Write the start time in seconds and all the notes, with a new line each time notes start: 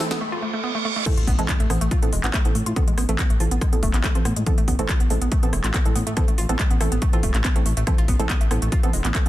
Already playing: A4 E5 B5, riser
0.00 E3 C4 A4
0.11 B3, snare, closed hi-hat
0.21 A3, reverse cymbal
0.32 F4
0.42 A3
0.54 A3
0.64 B3
0.75 A3
0.85 A3
0.96 A3
1.06 E3 A3 C4 A4, kick, cross-stick, closed hi-hat, crash, impact
1.17 A1 F4, closed hi-hat
1.27 A1 B3, kick, open hi-hat
1.39 A1 E3 G#3 C4 A4, closed hi-hat
1.49 B3, kick, clap, closed hi-hat
1.60 A1 A3, closed hi-hat
1.70 A1 E3 B3 C4 A4, cross-stick, open hi-hat
1.81 A1 A3, closed hi-hat
1.91 F4, kick, closed hi-hat
2.02 A1 E3 B3 C4 A4, closed hi-hat
2.12 E1 G#3, open hi-hat
2.24 A1 B3, clap, closed hi-hat
2.34 A3, kick, cross-stick, clap, closed hi-hat
2.45 A1 E3 B3 C4 A4, closed hi-hat
2.55 A2 A3, open hi-hat
2.66 A2 F4, closed hi-hat
2.76 E3 B3 C4 A4, kick, closed hi-hat
2.87 A1 G#3, closed hi-hat
2.98 A1 B3, cross-stick, open hi-hat
3.09 A1 E3 A3 C4 A4, closed hi-hat
3.19 B3, kick, clap, closed hi-hat
3.30 A1 A3, closed hi-hat
3.40 A1 E3 C4 F4 A4, open hi-hat
3.51 A1 B3, closed hi-hat
3.61 G#3, kick, cross-stick, closed hi-hat
3.73 A1 E3 B3 C4 A4, closed hi-hat
3.83 E1 A3, kick, open hi-hat
3.94 A1 B3, clap, closed hi-hat
4.04 A3, kick, clap, closed hi-hat
4.15 A1 E3 C4 F4 A4, closed hi-hat
4.25 A2 B3, cross-stick, open hi-hat
4.36 A2 G#3, closed hi-hat
4.46 E3 B3 C4 A4, kick, closed hi-hat
4.58 A1 A3, closed hi-hat
4.68 A1 B3, kick, open hi-hat
4.79 A1 E3 A3 C4 A4, closed hi-hat
4.89 F4, kick, cross-stick, clap, closed hi-hat
5.00 A1 B3, closed hi-hat
5.10 A1 E3 G#3 C4 A4, open hi-hat
5.22 A1 B3, closed hi-hat
5.32 A3, kick, closed hi-hat
5.43 A1 E3 B3 C4 A4, closed hi-hat
5.53 E1 A3, cross-stick, open hi-hat
5.64 A1 F4, clap, closed hi-hat
5.74 B3, kick, clap, closed hi-hat
5.85 A1 E3 G#3 C4 A4, closed hi-hat
5.95 A2 B3, open hi-hat
6.07 A2 A3, closed hi-hat
6.17 E3 B3 C4 A4, kick, cross-stick, closed hi-hat
6.28 A1 A3, closed hi-hat
6.38 A1 F4, open hi-hat
6.49 A1 E3 B3 C4 A4, closed hi-hat
6.59 G#3, kick, clap, closed hi-hat
6.70 A1 B3, closed hi-hat
6.81 A1 E3 A3 C4 A4, cross-stick, open hi-hat
6.92 A1 B3, closed hi-hat
7.02 A3, kick, closed hi-hat
7.13 A1 E3 C4 F4 A4, closed hi-hat
7.23 E1 A3, kick, open hi-hat
7.34 A1 A3, clap, closed hi-hat
7.44 B3, kick, cross-stick, clap, closed hi-hat
7.56 A1 E3 A3 C4 A4, closed hi-hat
7.66 A1 A3, open hi-hat
7.77 A1 A3, closed hi-hat
7.87 E3 A3 C4 A4, kick, cross-stick, closed hi-hat
7.98 A1 F4, closed hi-hat
8.08 A1 B3, kick, open hi-hat
8.20 A1 E3 G#3 C4 A4, closed hi-hat
8.30 B3, kick, clap, closed hi-hat
8.41 A1 A3, closed hi-hat
8.51 A1 E3 B3 C4 A4, cross-stick, open hi-hat
8.62 A1 A3, closed hi-hat
8.72 F4, kick, closed hi-hat
8.83 A1 E3 B3 C4 A4, closed hi-hat
8.93 E1 G#3, open hi-hat
9.05 A1 B3, clap, closed hi-hat
9.15 A3, kick, cross-stick, clap, closed hi-hat